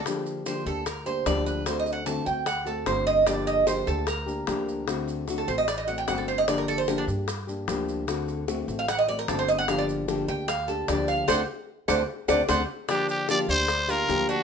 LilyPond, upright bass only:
\new Staff \with { instrumentName = "Upright bass" } { \clef bass \time 4/4 \key g \minor \tempo 4 = 150 r4. d,4. d,4~ | d,4. d,4. g,,4~ | g,,4. d,4. d,4~ | d,4. a,,4. g,,4~ |
g,,4. g,4. d,4~ | d,4. a,,4. g,,4~ | g,,4. d,4. d,4 | d,8 r4 d,8 r8 d,8 d,8 r8 |
r4. d,4. d,4 | }